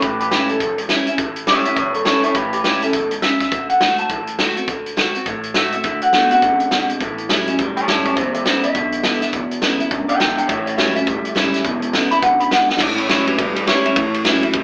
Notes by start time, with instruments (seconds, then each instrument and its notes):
0.01 upright bass A1, steel-string acoustic guitar A2, clean electric guitar G4 B4, kick, closed hi-hat
0.19 clean electric guitar G4 B4, closed hi-hat
0.31 steel-string acoustic guitar E3 G3 C#4 E4, clean electric guitar G4 B4, snare, closed hi-hat
0.49 clean electric guitar A4, muted upright bass stroke, closed hi-hat
0.60 upright bass E1, kick, closed hi-hat
0.78 closed hi-hat
0.89 steel-string acoustic guitar E3 G3 C#4 E4, snare, closed hi-hat
1.07 steel-string acoustic guitar C#4 E4, muted upright bass stroke, closed hi-hat
1.18 upright bass A1, steel-string acoustic guitar A2, kick, closed hi-hat
1.36 closed hi-hat
1.47 steel-string acoustic guitar E3 G3 C#4 E4, clean electric guitar C#5 E5, snare, closed hi-hat
1.65 steel-string acoustic guitar C#4 E4, clean electric guitar C#5 E5, muted upright bass stroke, closed hi-hat
1.76 upright bass E1, steel-string acoustic guitar E2, clean electric guitar C#5 E5, kick, closed hi-hat
1.94 clean electric guitar A4 C#5, closed hi-hat
2.05 steel-string acoustic guitar E3 G3 C#4 E4, clean electric guitar A4 C#5, snare, closed hi-hat
2.23 steel-string acoustic guitar C#4 E4, clean electric guitar A4 C#5, muted upright bass stroke, closed hi-hat
2.35 upright bass A1, steel-string acoustic guitar A2, clean electric guitar G4 B4, kick, closed hi-hat
2.53 clean electric guitar G4 B4, closed hi-hat
2.64 steel-string acoustic guitar E3 G3 C#4 E4, clean electric guitar G4 B4, snare, closed hi-hat
2.82 steel-string acoustic guitar C#4 E4, clean electric guitar A4, muted upright bass stroke, closed hi-hat
2.93 upright bass E1, steel-string acoustic guitar B2, kick, closed hi-hat
3.11 closed hi-hat
3.22 steel-string acoustic guitar C#3, clean electric guitar E5, snare, closed hi-hat
3.41 clean electric guitar E5, kick, snare, closed hi-hat
3.52 upright bass D2, steel-string acoustic guitar D3, kick, closed hi-hat
3.70 clean electric guitar F#5, closed hi-hat
3.81 steel-string acoustic guitar D3 A3 C4 F#4, snare, closed hi-hat
3.98 clean electric guitar A5, muted upright bass stroke, closed hi-hat
4.09 upright bass A1, steel-string acoustic guitar A2, kick, closed hi-hat
4.27 closed hi-hat
4.39 steel-string acoustic guitar D3 A3 C4 F#4, snare, closed hi-hat
4.56 steel-string acoustic guitar C4 F#4, muted upright bass stroke, closed hi-hat
4.68 upright bass D2, steel-string acoustic guitar D3, kick, closed hi-hat
4.86 closed hi-hat
4.97 steel-string acoustic guitar D3 A3 C4 F#4, snare, closed hi-hat
5.15 steel-string acoustic guitar C4 F#4, muted upright bass stroke, closed hi-hat
5.26 upright bass A1, steel-string acoustic guitar A2, kick, closed hi-hat
5.43 closed hi-hat
5.54 steel-string acoustic guitar D3 A3 C4 F#4, clean electric guitar E5, snare, closed hi-hat
5.72 steel-string acoustic guitar C4 F#4, clean electric guitar E5, muted upright bass stroke, closed hi-hat
5.83 upright bass D2, clean electric guitar D3 A3, steel-string acoustic guitar D3, kick, closed hi-hat
6.02 clean electric guitar F#5, closed hi-hat
6.13 clean electric guitar D3 B3, steel-string acoustic guitar D3 A3 C4 F#4, snare, closed hi-hat
6.31 steel-string acoustic guitar C4 F#4, clean electric guitar F#5, muted upright bass stroke, closed hi-hat
6.42 upright bass A1, steel-string acoustic guitar F#2, clean electric guitar D3 C4, kick, closed hi-hat
6.60 closed hi-hat
6.71 steel-string acoustic guitar B2, clean electric guitar D3 C4, snare, closed hi-hat
6.89 muted upright bass stroke, closed hi-hat
7.00 upright bass A1, clean electric guitar A2 E3, steel-string acoustic guitar A2, kick, closed hi-hat
7.18 closed hi-hat
7.29 clean electric guitar A2 F#3, steel-string acoustic guitar E3 G3 C#4 E4, snare, closed hi-hat
7.47 steel-string acoustic guitar C#4 E4, muted upright bass stroke, closed hi-hat
7.59 upright bass G1, steel-string acoustic guitar E2, clean electric guitar A2 G3, kick, closed hi-hat
7.76 clean electric guitar C#5 A5, muted upright bass stroke, closed hi-hat
7.88 upright bass F#1, clean electric guitar A2 G3 C#5 A5, steel-string acoustic guitar E3 G3 C#4 E4, snare, closed hi-hat
8.05 steel-string acoustic guitar C#4 E4, clean electric guitar C#5 A5, muted upright bass stroke, kick, closed hi-hat
8.16 upright bass E1, clean electric guitar E2 B2 C5 E5, steel-string acoustic guitar E2, kick, closed hi-hat
8.34 clean electric guitar C5 E5, closed hi-hat
8.45 clean electric guitar E2 C#3 C5 E5, steel-string acoustic guitar D3 G#3 B3 E4, snare, closed hi-hat
8.64 steel-string acoustic guitar B3 E4, clean electric guitar E5, muted upright bass stroke, closed hi-hat
8.75 upright bass B1, clean electric guitar E2 D3, steel-string acoustic guitar B2, kick, closed hi-hat
8.92 closed hi-hat
9.03 clean electric guitar E2 D3, steel-string acoustic guitar D3 G#3 B3 E4, snare, closed hi-hat
9.22 steel-string acoustic guitar B3 E4, muted upright bass stroke, snare, closed hi-hat
9.33 upright bass E1, clean electric guitar E2 B2, steel-string acoustic guitar E2, kick, closed hi-hat
9.51 muted upright bass stroke, closed hi-hat
9.62 upright bass D2, clean electric guitar E2 C#3, steel-string acoustic guitar D3 G#3 B3 E4, snare, closed hi-hat
9.80 steel-string acoustic guitar B3 E4, muted upright bass stroke, closed hi-hat
9.91 upright bass C#2, clean electric guitar E2 D3, steel-string acoustic guitar F#2, kick, closed hi-hat
10.08 clean electric guitar E5 G5, muted upright bass stroke, closed hi-hat
10.19 upright bass B1, clean electric guitar E2 D3 E5, steel-string acoustic guitar G#2, snare, closed hi-hat
10.37 clean electric guitar E5 G5, muted upright bass stroke, closed hi-hat
10.48 upright bass A1, clean electric guitar A2 E3 C#5 E5, steel-string acoustic guitar A2, kick, closed hi-hat
10.66 clean electric guitar C#5 E5, closed hi-hat
10.77 clean electric guitar A2 F#3 C#5 E5, steel-string acoustic guitar E3 G3 C#4 E4, snare, closed hi-hat
10.95 steel-string acoustic guitar C#4 E4, clean electric guitar E5, muted upright bass stroke, closed hi-hat
11.07 upright bass G1, steel-string acoustic guitar E2, clean electric guitar A2 G3, kick, closed hi-hat
11.25 muted upright bass stroke, closed hi-hat
11.35 upright bass F#1, clean electric guitar A2 G3, steel-string acoustic guitar E3 G3 C#4 E4, snare, closed hi-hat
11.53 muted upright bass stroke, snare, closed hi-hat
11.64 upright bass E1, clean electric guitar E2 B2, steel-string acoustic guitar E2, kick, closed hi-hat
11.82 closed hi-hat
11.93 clean electric guitar E2 C#3, steel-string acoustic guitar D3 G#3 B3 E4, snare, closed hi-hat
12.11 steel-string acoustic guitar B3 E4, clean electric guitar B5, muted upright bass stroke, closed hi-hat
12.22 upright bass B1, clean electric guitar E2 D3 F#5, steel-string acoustic guitar F#2, kick, closed hi-hat
12.40 clean electric guitar B5, closed hi-hat
12.51 clean electric guitar E2 D3 F#5, steel-string acoustic guitar G#2, snare, closed hi-hat
12.69 clean electric guitar G5, muted upright bass stroke, snare
12.77 upright bass A1, clean electric guitar E4 C#5, kick, snare, crash
12.81 clean electric guitar A2 E3, steel-string acoustic guitar A2
12.97 clean electric guitar E4 C#5, ride
13.08 clean electric guitar A2 F#3 E4 C#5, steel-string acoustic guitar E3 C#4 E4, snare, ride
13.26 clean electric guitar G4 B4, muted upright bass stroke, ride
13.38 upright bass E1, steel-string acoustic guitar E2, clean electric guitar A2 G3 G4 B4, kick, ride
13.56 clean electric guitar G4 B4, ride
13.67 clean electric guitar A2 G3 C#5, steel-string acoustic guitar E3 G3 C#4 E4, snare, ride
13.85 steel-string acoustic guitar C#4 E4, muted upright bass stroke, ride
13.96 upright bass A1, clean electric guitar A2 E3, steel-string acoustic guitar A2, kick, ride
14.14 ride
14.24 clean electric guitar A2 F#3, steel-string acoustic guitar E3 G3 C#4 E4, snare, ride
14.43 steel-string acoustic guitar C#4 E4, muted upright bass stroke, ride
14.53 upright bass E1, steel-string acoustic guitar E2, clean electric guitar A2 G3, kick, ride